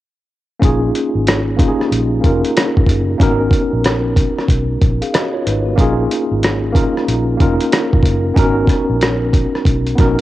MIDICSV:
0, 0, Header, 1, 4, 480
1, 0, Start_track
1, 0, Tempo, 645161
1, 462, Time_signature, 4, 2, 24, 8
1, 7596, End_track
2, 0, Start_track
2, 0, Title_t, "Tine electric piano"
2, 0, Program_c, 0, 4
2, 443, Note_on_c, 0, 58, 74
2, 451, Note_on_c, 0, 61, 77
2, 463, Note_on_c, 0, 63, 72
2, 470, Note_on_c, 0, 65, 76
2, 481, Note_on_c, 0, 68, 91
2, 622, Control_c, 0, 64, 127
2, 1144, Note_off_c, 0, 58, 0
2, 1149, Note_off_c, 0, 61, 0
2, 1154, Note_off_c, 0, 63, 0
2, 1158, Note_off_c, 0, 65, 0
2, 1163, Note_off_c, 0, 68, 0
2, 1165, Note_on_c, 0, 58, 70
2, 1176, Note_on_c, 0, 61, 60
2, 1183, Note_on_c, 0, 63, 67
2, 1193, Note_on_c, 0, 65, 62
2, 1203, Note_on_c, 0, 67, 62
2, 1251, Note_on_c, 0, 68, 69
2, 1252, Note_off_c, 0, 67, 0
2, 1635, Note_off_c, 0, 58, 0
2, 1640, Note_off_c, 0, 61, 0
2, 1644, Note_off_c, 0, 63, 0
2, 1646, Note_on_c, 0, 58, 57
2, 1649, Note_off_c, 0, 65, 0
2, 1654, Note_on_c, 0, 61, 53
2, 1665, Note_on_c, 0, 63, 55
2, 1673, Note_on_c, 0, 65, 56
2, 1678, Note_off_c, 0, 68, 0
2, 1682, Note_on_c, 0, 70, 70
2, 2346, Note_off_c, 0, 58, 0
2, 2350, Note_off_c, 0, 61, 0
2, 2356, Note_off_c, 0, 63, 0
2, 2359, Note_off_c, 0, 65, 0
2, 2364, Note_off_c, 0, 70, 0
2, 2364, Note_on_c, 0, 58, 68
2, 2374, Note_on_c, 0, 61, 77
2, 2381, Note_on_c, 0, 63, 78
2, 2390, Control_c, 0, 64, 0
2, 2393, Note_on_c, 0, 66, 76
2, 2401, Note_on_c, 0, 70, 96
2, 2412, Note_on_c, 0, 59, 81
2, 2433, Note_off_c, 0, 58, 0
2, 2517, Control_c, 0, 64, 127
2, 3301, Note_off_c, 0, 61, 0
2, 3304, Note_off_c, 0, 63, 0
2, 3310, Note_off_c, 0, 66, 0
2, 3314, Note_off_c, 0, 70, 0
2, 3320, Note_off_c, 0, 59, 0
2, 3732, Note_on_c, 0, 77, 48
2, 3736, Note_on_c, 0, 68, 42
2, 3818, Note_off_c, 0, 77, 0
2, 3820, Note_off_c, 0, 68, 0
2, 3823, Note_on_c, 0, 75, 59
2, 3826, Note_on_c, 0, 66, 46
2, 3964, Note_off_c, 0, 75, 0
2, 3966, Note_off_c, 0, 66, 0
2, 3969, Note_on_c, 0, 73, 66
2, 3974, Note_on_c, 0, 65, 53
2, 4056, Note_off_c, 0, 73, 0
2, 4059, Note_off_c, 0, 65, 0
2, 4062, Note_on_c, 0, 71, 53
2, 4064, Note_on_c, 0, 63, 48
2, 4204, Note_off_c, 0, 71, 0
2, 4205, Note_off_c, 0, 63, 0
2, 4207, Note_on_c, 0, 66, 51
2, 4210, Note_on_c, 0, 58, 47
2, 4273, Note_off_c, 0, 58, 0
2, 4282, Note_on_c, 0, 58, 91
2, 4293, Note_on_c, 0, 61, 78
2, 4300, Note_on_c, 0, 63, 78
2, 4310, Control_c, 0, 64, 0
2, 4310, Note_on_c, 0, 65, 84
2, 4319, Note_on_c, 0, 68, 93
2, 4437, Note_off_c, 0, 66, 0
2, 4459, Control_c, 0, 64, 127
2, 4984, Note_off_c, 0, 58, 0
2, 4989, Note_off_c, 0, 61, 0
2, 4993, Note_off_c, 0, 63, 0
2, 4998, Note_off_c, 0, 65, 0
2, 5002, Note_off_c, 0, 68, 0
2, 5004, Note_on_c, 0, 58, 75
2, 5012, Note_on_c, 0, 61, 60
2, 5022, Note_on_c, 0, 63, 64
2, 5030, Note_on_c, 0, 65, 64
2, 5039, Note_on_c, 0, 70, 80
2, 5474, Note_off_c, 0, 58, 0
2, 5478, Note_off_c, 0, 61, 0
2, 5483, Note_off_c, 0, 63, 0
2, 5485, Note_on_c, 0, 58, 67
2, 5487, Note_off_c, 0, 65, 0
2, 5492, Note_off_c, 0, 70, 0
2, 5494, Note_on_c, 0, 61, 57
2, 5504, Note_on_c, 0, 63, 63
2, 5512, Note_on_c, 0, 65, 64
2, 5520, Note_on_c, 0, 70, 76
2, 6185, Note_off_c, 0, 58, 0
2, 6190, Note_off_c, 0, 61, 0
2, 6195, Note_off_c, 0, 63, 0
2, 6199, Note_off_c, 0, 65, 0
2, 6203, Note_off_c, 0, 70, 0
2, 6206, Note_on_c, 0, 59, 85
2, 6216, Note_on_c, 0, 61, 82
2, 6225, Note_on_c, 0, 63, 79
2, 6229, Control_c, 0, 64, 0
2, 6234, Note_on_c, 0, 66, 84
2, 6243, Note_on_c, 0, 70, 95
2, 6360, Control_c, 0, 64, 127
2, 7137, Note_off_c, 0, 59, 0
2, 7142, Note_off_c, 0, 61, 0
2, 7146, Note_off_c, 0, 63, 0
2, 7151, Note_off_c, 0, 66, 0
2, 7155, Note_off_c, 0, 70, 0
2, 7405, Note_on_c, 0, 59, 72
2, 7415, Note_on_c, 0, 61, 62
2, 7425, Note_on_c, 0, 63, 69
2, 7435, Note_on_c, 0, 66, 68
2, 7444, Note_on_c, 0, 70, 80
2, 7596, Note_off_c, 0, 59, 0
2, 7596, Note_off_c, 0, 61, 0
2, 7596, Note_off_c, 0, 63, 0
2, 7596, Note_off_c, 0, 66, 0
2, 7596, Note_off_c, 0, 70, 0
2, 7596, End_track
3, 0, Start_track
3, 0, Title_t, "Fingered electric bass"
3, 0, Program_c, 1, 33
3, 464, Note_on_c, 1, 34, 82
3, 667, Note_off_c, 1, 34, 0
3, 856, Note_on_c, 1, 32, 70
3, 1261, Note_off_c, 1, 32, 0
3, 1426, Note_on_c, 1, 34, 76
3, 1628, Note_off_c, 1, 34, 0
3, 1669, Note_on_c, 1, 29, 73
3, 1793, Note_off_c, 1, 29, 0
3, 2061, Note_on_c, 1, 32, 68
3, 2128, Note_off_c, 1, 32, 0
3, 2133, Note_on_c, 1, 30, 78
3, 2340, Note_off_c, 1, 30, 0
3, 2382, Note_on_c, 1, 32, 92
3, 2585, Note_off_c, 1, 32, 0
3, 2775, Note_on_c, 1, 34, 73
3, 3180, Note_off_c, 1, 34, 0
3, 3340, Note_on_c, 1, 35, 77
3, 3544, Note_off_c, 1, 35, 0
3, 3586, Note_on_c, 1, 34, 70
3, 3710, Note_off_c, 1, 34, 0
3, 4067, Note_on_c, 1, 32, 72
3, 4268, Note_off_c, 1, 32, 0
3, 4302, Note_on_c, 1, 34, 89
3, 4505, Note_off_c, 1, 34, 0
3, 4698, Note_on_c, 1, 32, 74
3, 5101, Note_off_c, 1, 32, 0
3, 5269, Note_on_c, 1, 34, 78
3, 5469, Note_off_c, 1, 34, 0
3, 5510, Note_on_c, 1, 29, 72
3, 5633, Note_off_c, 1, 29, 0
3, 5905, Note_on_c, 1, 32, 76
3, 5972, Note_off_c, 1, 32, 0
3, 5976, Note_on_c, 1, 30, 76
3, 6182, Note_off_c, 1, 30, 0
3, 6225, Note_on_c, 1, 32, 87
3, 6427, Note_off_c, 1, 32, 0
3, 6618, Note_on_c, 1, 34, 76
3, 7022, Note_off_c, 1, 34, 0
3, 7185, Note_on_c, 1, 35, 78
3, 7387, Note_off_c, 1, 35, 0
3, 7432, Note_on_c, 1, 34, 83
3, 7554, Note_off_c, 1, 34, 0
3, 7596, End_track
4, 0, Start_track
4, 0, Title_t, "Drums"
4, 462, Note_on_c, 9, 36, 91
4, 468, Note_on_c, 9, 42, 60
4, 536, Note_off_c, 9, 36, 0
4, 542, Note_off_c, 9, 42, 0
4, 707, Note_on_c, 9, 42, 48
4, 782, Note_off_c, 9, 42, 0
4, 945, Note_on_c, 9, 42, 61
4, 955, Note_on_c, 9, 37, 94
4, 1019, Note_off_c, 9, 42, 0
4, 1030, Note_off_c, 9, 37, 0
4, 1182, Note_on_c, 9, 36, 77
4, 1186, Note_on_c, 9, 42, 58
4, 1256, Note_off_c, 9, 36, 0
4, 1261, Note_off_c, 9, 42, 0
4, 1349, Note_on_c, 9, 37, 27
4, 1423, Note_off_c, 9, 37, 0
4, 1431, Note_on_c, 9, 42, 58
4, 1506, Note_off_c, 9, 42, 0
4, 1667, Note_on_c, 9, 36, 78
4, 1667, Note_on_c, 9, 42, 45
4, 1741, Note_off_c, 9, 36, 0
4, 1741, Note_off_c, 9, 42, 0
4, 1819, Note_on_c, 9, 42, 43
4, 1894, Note_off_c, 9, 42, 0
4, 1909, Note_on_c, 9, 42, 82
4, 1914, Note_on_c, 9, 37, 96
4, 1983, Note_off_c, 9, 42, 0
4, 1989, Note_off_c, 9, 37, 0
4, 2059, Note_on_c, 9, 36, 77
4, 2130, Note_off_c, 9, 36, 0
4, 2130, Note_on_c, 9, 36, 72
4, 2149, Note_on_c, 9, 42, 57
4, 2204, Note_off_c, 9, 36, 0
4, 2224, Note_off_c, 9, 42, 0
4, 2380, Note_on_c, 9, 36, 85
4, 2388, Note_on_c, 9, 42, 58
4, 2454, Note_off_c, 9, 36, 0
4, 2463, Note_off_c, 9, 42, 0
4, 2610, Note_on_c, 9, 36, 74
4, 2625, Note_on_c, 9, 42, 51
4, 2685, Note_off_c, 9, 36, 0
4, 2699, Note_off_c, 9, 42, 0
4, 2860, Note_on_c, 9, 42, 55
4, 2870, Note_on_c, 9, 37, 101
4, 2935, Note_off_c, 9, 42, 0
4, 2945, Note_off_c, 9, 37, 0
4, 3098, Note_on_c, 9, 36, 71
4, 3102, Note_on_c, 9, 42, 58
4, 3172, Note_off_c, 9, 36, 0
4, 3176, Note_off_c, 9, 42, 0
4, 3263, Note_on_c, 9, 37, 29
4, 3337, Note_off_c, 9, 37, 0
4, 3337, Note_on_c, 9, 36, 72
4, 3348, Note_on_c, 9, 42, 58
4, 3411, Note_off_c, 9, 36, 0
4, 3422, Note_off_c, 9, 42, 0
4, 3583, Note_on_c, 9, 42, 43
4, 3584, Note_on_c, 9, 36, 78
4, 3657, Note_off_c, 9, 42, 0
4, 3658, Note_off_c, 9, 36, 0
4, 3735, Note_on_c, 9, 42, 43
4, 3809, Note_off_c, 9, 42, 0
4, 3825, Note_on_c, 9, 42, 76
4, 3831, Note_on_c, 9, 37, 99
4, 3900, Note_off_c, 9, 42, 0
4, 3905, Note_off_c, 9, 37, 0
4, 4068, Note_on_c, 9, 42, 59
4, 4142, Note_off_c, 9, 42, 0
4, 4299, Note_on_c, 9, 36, 87
4, 4305, Note_on_c, 9, 42, 60
4, 4373, Note_off_c, 9, 36, 0
4, 4379, Note_off_c, 9, 42, 0
4, 4548, Note_on_c, 9, 42, 57
4, 4623, Note_off_c, 9, 42, 0
4, 4785, Note_on_c, 9, 42, 58
4, 4795, Note_on_c, 9, 37, 87
4, 4859, Note_off_c, 9, 42, 0
4, 4869, Note_off_c, 9, 37, 0
4, 5022, Note_on_c, 9, 36, 74
4, 5028, Note_on_c, 9, 42, 61
4, 5096, Note_off_c, 9, 36, 0
4, 5102, Note_off_c, 9, 42, 0
4, 5188, Note_on_c, 9, 37, 27
4, 5262, Note_off_c, 9, 37, 0
4, 5270, Note_on_c, 9, 42, 61
4, 5345, Note_off_c, 9, 42, 0
4, 5507, Note_on_c, 9, 36, 81
4, 5507, Note_on_c, 9, 42, 47
4, 5581, Note_off_c, 9, 36, 0
4, 5581, Note_off_c, 9, 42, 0
4, 5658, Note_on_c, 9, 42, 46
4, 5733, Note_off_c, 9, 42, 0
4, 5747, Note_on_c, 9, 42, 80
4, 5753, Note_on_c, 9, 37, 91
4, 5821, Note_off_c, 9, 42, 0
4, 5827, Note_off_c, 9, 37, 0
4, 5901, Note_on_c, 9, 36, 77
4, 5973, Note_off_c, 9, 36, 0
4, 5973, Note_on_c, 9, 36, 77
4, 5993, Note_on_c, 9, 42, 59
4, 6047, Note_off_c, 9, 36, 0
4, 6068, Note_off_c, 9, 42, 0
4, 6223, Note_on_c, 9, 36, 91
4, 6230, Note_on_c, 9, 42, 55
4, 6297, Note_off_c, 9, 36, 0
4, 6304, Note_off_c, 9, 42, 0
4, 6454, Note_on_c, 9, 36, 75
4, 6467, Note_on_c, 9, 42, 54
4, 6473, Note_on_c, 9, 37, 29
4, 6528, Note_off_c, 9, 36, 0
4, 6542, Note_off_c, 9, 42, 0
4, 6547, Note_off_c, 9, 37, 0
4, 6705, Note_on_c, 9, 42, 57
4, 6716, Note_on_c, 9, 37, 100
4, 6780, Note_off_c, 9, 42, 0
4, 6790, Note_off_c, 9, 37, 0
4, 6944, Note_on_c, 9, 36, 76
4, 6946, Note_on_c, 9, 42, 60
4, 7018, Note_off_c, 9, 36, 0
4, 7021, Note_off_c, 9, 42, 0
4, 7107, Note_on_c, 9, 37, 29
4, 7181, Note_off_c, 9, 37, 0
4, 7181, Note_on_c, 9, 36, 70
4, 7190, Note_on_c, 9, 42, 59
4, 7256, Note_off_c, 9, 36, 0
4, 7264, Note_off_c, 9, 42, 0
4, 7340, Note_on_c, 9, 42, 41
4, 7414, Note_off_c, 9, 42, 0
4, 7426, Note_on_c, 9, 42, 47
4, 7429, Note_on_c, 9, 36, 89
4, 7439, Note_on_c, 9, 37, 29
4, 7501, Note_off_c, 9, 42, 0
4, 7503, Note_off_c, 9, 36, 0
4, 7513, Note_off_c, 9, 37, 0
4, 7596, End_track
0, 0, End_of_file